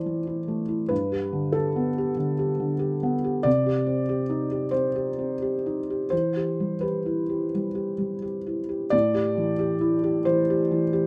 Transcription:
Already playing: A2 E3 A3 E4 C5 D5
0.06 E3
0.27 E4
0.48 A3
0.68 E4
0.89 G2 B4
1.12 G4
1.33 D3
1.53 G4 A4
1.76 B3
1.98 G4
2.17 D3
2.39 G4
2.60 D3
2.79 G4
3.03 B3
3.24 G4
3.43 C3 D5
3.66 G4
3.86 C4
4.09 G4
4.30 D#4
4.51 G4
4.71 C4 C5
4.96 G4
5.19 C4
5.42 G4
5.66 D#4
5.90 G4
6.10 E3 C5
6.36 G4
6.60 G3
6.81 G4 B4
7.06 E4
7.29 G4
7.54 G3
7.75 G4
7.98 G3
8.22 G4
8.46 E4
8.69 G4
8.90 A2 D5
9.14 G4
9.37 E3
9.59 G4
9.81 E4
10.03 G4
10.25 E3 C5
10.50 G4
10.71 E3
10.93 G4

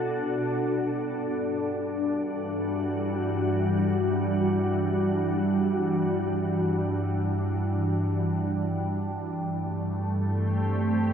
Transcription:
Already playing: B2 G3 D4 F#4 A4
1.12 G2
1.80 E3
1.88 F#4
2.11 G3
9.24 A3
10.03 C4 G4

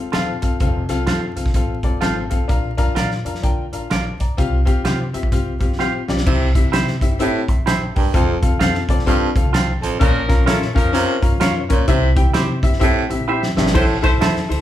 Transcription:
Already playing: E1
0.12 D#1 C4 F4 A4 C5 F5, snare, closed hi-hat
0.42 E1 C4 F4 A4 F5, kick, closed hi-hat
0.60 F1 C4 F4 A4 F5, kick, closed hi-hat
0.89 C2 C4 F4 A4 F5, snare, closed hi-hat
1.06 F2 C4 F4 A4 C5 F5, snare, closed hi-hat
1.36 C2 C4 F4 A4 F5, closed hi-hat
1.46 kick, snare
1.54 A1 C4 F4 A4 F5, kick, closed hi-hat
1.83 E1 C4 F4 A4 D5, kick, closed hi-hat
2.01 G#1 C4 F4 A4 C5 F5, snare, closed hi-hat
2.30 A1 C4 F4 A4 F5, kick, closed hi-hat
2.48 A#1 D4 F4 A#4 F5, kick, closed hi-hat
2.77 F2 D4 F4 A#4 F5, kick, snare, closed hi-hat
2.95 A#2 D4 F4 A#4 D5 F5, snare, closed hi-hat
3.11 snare
3.25 F2 D4 F4 A#4 F5, closed hi-hat
3.35 snare
3.42 D2 D4 F4 A#4 G5, kick, closed hi-hat
3.73 A1 D4 F4 A#4 F5, closed hi-hat
3.90 A#1 F4 A#4 C5 D5 F5 A5, snare, closed hi-hat
4.20 B1 D5 A#5, kick, closed hi-hat
4.37 C2 C4 F4 G4 F5, kick, closed hi-hat
4.65 C4 F4 G4 F5, kick, closed hi-hat
4.84 C3 C4 F4 G4 C5 F5, snare, closed hi-hat
5.13 G1 C4 F4 G4 E5, closed hi-hat
5.23 kick
5.32 C2 C4 F4 G4 F5, kick, closed hi-hat
5.59 G1 C4 F4 G4 F5, kick, closed hi-hat
5.79 A#1 C4 F4 G4 C5 F5, snare
6.08 B1 C4 F4 G4 D5, snare
6.17 snare
6.26 C2 C3 C4 E4 G4 E5, kick, crash
6.55 C4 E4 G4 E5, kick, closed hi-hat
6.64 C2
6.72 C3 C4 E4 G4 C5 E5, snare, closed hi-hat
6.87 snare
7.01 G1 C4 E4 G4 E5, kick, closed hi-hat
7.19 A2 C4 E4 G4 E5, closed hi-hat
7.48 A1 E5 C6, kick, closed hi-hat
7.58 A#1
7.66 E4 G4 C5 E5 A5, snare, closed hi-hat
7.96 E1 G2 A#4 G5, kick, open hi-hat
8.13 F1 F2 C4 F4 A4 F5, kick, closed hi-hat
8.42 C4 F4 A4 F5, kick, closed hi-hat
8.52 F1
8.59 F2 C4 F4 A4 C5 F5, snare, closed hi-hat
8.74 snare
8.88 C2 C4 F4 A4 D5, kick, closed hi-hat
8.99 snare
9.06 G2 C4 F4 A4 F5, kick, closed hi-hat
9.35 D2 C4 F4 A4 F5, kick, closed hi-hat
9.44 C2
9.53 F4 A4 C5 F5 G5, snare, closed hi-hat
9.82 A1 F2 C5 A5, closed hi-hat
9.99 A#1 A#2 F3 C#4 F4 A#4 F5, kick, closed hi-hat
10.28 C#4 F4 A#4 F5, kick, snare, closed hi-hat
10.38 A#1
10.46 A#2 A3 C#4 F4 A4 A#4 C#5 E5 F5, snare, closed hi-hat
10.62 snare
10.74 F2 F3 C#4 F4 A#4 F5, kick, closed hi-hat
10.93 C3 C#4 F4 A#4 F5, closed hi-hat
11.21 G2 C#4 F4 A#4 F5, kick, closed hi-hat
11.32 F2
11.40 C#4 F4 A#4 C5 C#5 F5, snare, closed hi-hat
11.69 B1 A#2 C#4 F4 A#4 C#5, kick, closed hi-hat
11.88 C2 C3 C4 E4 G4 E5, kick, closed hi-hat
12.16 C4 E4 G4 G5, kick, closed hi-hat
12.26 C2
12.34 C3 C4 E4 G4 C5 E5, snare, closed hi-hat
12.63 G1 C4 E4 G4 E5, kick, closed hi-hat
12.73 snare
12.79 A2 C4 E4 G4 E5, kick, closed hi-hat
13.09 A1 C4 E4 G4 E5, closed hi-hat
13.19 A#1
13.27 C4 E4 G4 C5 E5
13.43 snare
13.56 G#1 G2 C4 E4 G4 E5, snare
13.67 snare
13.73 A1 A2 A3 E4 A4 C5, kick, crash
14.02 A3 E4 A4 C5, kick, snare, ride
14.12 A1
14.20 E2 E4 A4 C5 E5, snare, ride
14.36 snare
14.49 D2 E4 A4 C5, ride

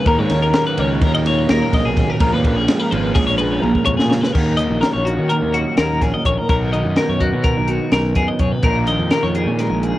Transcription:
Already playing: A#3 D#4
0.05 D#2 A#2 D#3 F#3 A#3 D#4 A#4, kick, ride
0.19 G#2 C#5
0.30 D#2 C#4, snare, ride
0.43 A#4
0.54 A#3, snare, ride
0.67 B4
0.78 C#2 D#2 A#2 D#3 F#3 A#3 C#4 D#4 C#5, ride
1.02 D#2 A#3 A#4, kick, ride
1.15 D#5
1.26 A#2 F4 C#5, snare, ride
1.49 D#2 A#3 A#4, snare, ride
1.73 A#1 C#4 D#5, kick, snare, ride
1.85 B1 G#4
1.97 D#2, kick, snare, ride
2.10 A#4
2.20 A#1 A#2 F3 A#3 C#4 F4 A#4, kick, ride
2.32 D#2 B4
2.44 A#1 A#3, kick, ride
2.56 C#4 G#4
2.68 G#3, snare, ride
2.80 A#4
2.91 G#1 A#2 F3 A#3 C#4 F4 B4, ride
3.15 A#1 G#3 G#4, kick, snare, ride
3.27 C#5
3.38 F2 G#4 B4, ride
3.62 A#1 A#2 A#4, high tom
3.75 kick
3.86 F2 B2 C#5, kick
3.97 A#2 G#4, snare
4.11 C#3, snare
4.21 B4, snare
4.33 D#2 A#2 D#3 F#3 A#3 A#4, kick, crash
4.37 D#4
4.57 D#3 D#5, closed hi-hat
4.70 A#1
4.81 C#4 A#4, snare, closed hi-hat
4.93 A#1 C#5
5.05 F#4, closed hi-hat
5.19 D#3
5.29 A#3 A#4, closed hi-hat
5.42 D#2
5.54 C#4 F#4, closed hi-hat
5.77 D#2 F#4 A#4, snare, closed hi-hat
6.01 A#1 C#4 G#4, kick, snare, closed hi-hat
6.14 D#5
6.25 A#1 D#2 C#5, kick, closed hi-hat
6.38 A#4
6.49 B1 B2 F#3 B3 D#4 F#4 A#4, kick, closed hi-hat
6.73 D#3 D#5, closed hi-hat
6.85 F#2
6.96 B3 A#4, snare, closed hi-hat
7.09 F#2 C#5
7.20 D#4 F#4, kick, closed hi-hat
7.33 B2
7.44 A#4, kick, closed hi-hat
7.57 B1
7.68 B3 F#4, closed hi-hat
7.92 B1 D#4 A#4, snare, closed hi-hat
8.15 F#2 B3 G#4, kick, closed hi-hat
8.28 D#5
8.39 F#2 B2 C#5, kick, closed hi-hat
8.52 B4
8.62 A#1 A#2 F3 A#3 D#4 F4 A#4, kick, closed hi-hat
8.87 D#3 D#5, closed hi-hat
8.99 F2
9.11 A#3 A#4, snare, closed hi-hat
9.23 F2 C#5
9.35 D#4 G#4, closed hi-hat
9.46 A#2
9.59 G#3 A#4, snare, closed hi-hat
9.70 A#1
9.83 A#3 G#4, closed hi-hat

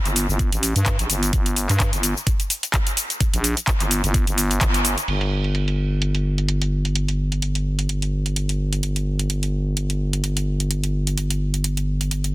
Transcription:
0.05 G1, clap, closed hi-hat, cabasa
0.16 open hi-hat, cabasa
0.29 G1, cabasa
0.39 kick, closed hi-hat, cabasa
0.52 A1, closed hi-hat, cabasa
0.63 open hi-hat, cabasa
0.76 G2, closed hi-hat, cabasa
0.86 kick, clap, closed hi-hat, cabasa
0.99 A#1, closed hi-hat, cabasa
1.10 G1, open hi-hat, cabasa
1.23 closed hi-hat, cabasa
1.33 G1, kick, closed hi-hat, cabasa
1.46 closed hi-hat, cabasa
1.56 open hi-hat, cabasa
1.69 G2, clap, closed hi-hat, cabasa
1.80 kick, clap, closed hi-hat, cabasa
1.93 G1, closed hi-hat, cabasa
2.03 open hi-hat, cabasa
2.17 cabasa
2.27 kick, closed hi-hat, cabasa
2.40 closed hi-hat, cabasa
2.50 open hi-hat, cabasa
2.63 closed hi-hat, cabasa
2.74 kick, clap, closed hi-hat, cabasa
2.87 closed hi-hat, cabasa
2.97 open hi-hat, cabasa
3.10 closed hi-hat, cabasa
3.20 kick, closed hi-hat, cabasa
3.33 A#1, closed hi-hat, cabasa
3.44 open hi-hat, cabasa
3.57 closed hi-hat, cabasa
3.67 kick, clap, closed hi-hat, cabasa
3.80 G1, clap, closed hi-hat, cabasa
3.91 open hi-hat, cabasa
4.04 G1, closed hi-hat, cabasa
4.14 kick, closed hi-hat, cabasa
4.27 G1, closed hi-hat, cabasa
4.38 open hi-hat, cabasa
4.51 closed hi-hat, cabasa
4.61 G1, kick, clap, closed hi-hat, cabasa
4.74 closed hi-hat, cabasa
4.85 open hi-hat, cabasa
4.98 closed hi-hat, cabasa
5.08 G1, closed hi-hat, crash
5.21 closed hi-hat
5.44 closed hi-hat
5.55 closed hi-hat
5.68 closed hi-hat
6.02 closed hi-hat
6.15 closed hi-hat
6.38 closed hi-hat
6.49 closed hi-hat
6.62 closed hi-hat
6.85 closed hi-hat
6.95 closed hi-hat
7.08 closed hi-hat
7.32 closed hi-hat
7.42 closed hi-hat
7.55 closed hi-hat
7.79 closed hi-hat
7.89 closed hi-hat
8.02 closed hi-hat
8.26 closed hi-hat
8.36 closed hi-hat
8.49 closed hi-hat
8.73 closed hi-hat
8.83 closed hi-hat
8.96 closed hi-hat
9.19 closed hi-hat
9.30 closed hi-hat
9.43 closed hi-hat
9.77 closed hi-hat
9.90 closed hi-hat
10.13 closed hi-hat
10.24 closed hi-hat
10.37 closed hi-hat
10.60 closed hi-hat
10.71 closed hi-hat
10.84 closed hi-hat
11.07 closed hi-hat
11.18 closed hi-hat
11.30 closed hi-hat
11.54 closed hi-hat
11.64 closed hi-hat
11.77 closed hi-hat
12.01 closed hi-hat
12.11 closed hi-hat
12.24 closed hi-hat

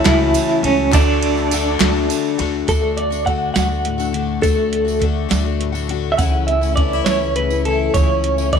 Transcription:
Already playing: C#2 C#3 F#3 C#4 E4 F#4 A4 C#5 E5 A5
0.04 C#2 C#3 E3 A3 C#4 E4 F#4, kick, snare, clap, ride
0.34 ride, tambourine
0.49 clap, tambourine
0.63 C#2 A3 C#4 F#4, ride
0.91 D2 D3 F#3 A3 D4 F#4 A4 D5, kick, clap, ride, tambourine
1.23 ride
1.36 clap, tambourine
1.51 D3 A3 D4 F#4, ride, tambourine
1.80 D2 D3 A3 D4 F#4, snare, clap, ride
1.96 tambourine
2.10 clap, ride, tambourine
2.25 tambourine
2.38 D2 A3 D4 F#4, clap, ride
2.67 D2 D3 A3 D4 F#4 A4, kick, closed hi-hat, tambourine
2.81 A3 D4 F#4
2.97 F#4 D5, closed hi-hat
3.10 A3 D4 F#4, tambourine
3.25 D3 A3 D4 F#4 F#5, kick, closed hi-hat
3.54 D2 D3 A3 D4 F#4 F#5, snare, closed hi-hat, tambourine
3.69 A3 D4 F#4, tambourine
3.85 A2 A3, closed hi-hat
3.98 A3 D4 F#4, tambourine
4.13 D3 A3 D4 F#4, closed hi-hat
4.41 D2 D3 A3 D4 F#4 A4, kick, closed hi-hat, tambourine
4.55 A3 D4 F#4
4.73 F#4, closed hi-hat
4.85 A3 D4 F#4, tambourine
4.99 D3 A3 D4 F#4, kick, closed hi-hat
5.29 D2 D3 A3 D4 F#4, snare, closed hi-hat, tambourine
5.43 A3 D4 F#4, tambourine
5.61 A2 A3, closed hi-hat
5.72 A3 D4 F#4, tambourine
5.87 D3 A3 D4 F#4, closed hi-hat
6.12 E5
6.17 C#2 C#3 E3 A3 C#4 E4 F#5, kick, closed hi-hat, tambourine
6.32 A3 C#4 E4
6.47 C#4 E5, closed hi-hat
6.61 A3 C#4 E4, tambourine
6.76 E3 A3 C#4 D4 E4 D5, kick, closed hi-hat
6.93 E4
7.05 C#2 C#3 E3 A3 C#4 E4 C#5, snare, closed hi-hat, tambourine
7.21 A3 C#4 E4, tambourine
7.36 C#3 A3 B4, closed hi-hat
7.50 A3 C#4 E4, tambourine
7.65 E3 A3 C#4 E4 A4, closed hi-hat
7.94 C#2 C#3 E3 A3 C#4 E4 C#5, kick, closed hi-hat, tambourine
8.09 A3 C#4 E4
8.24 C#4, closed hi-hat
8.38 A3 C#4 E4, tambourine
8.53 E3 A3 C#4 E4 D5, kick, closed hi-hat

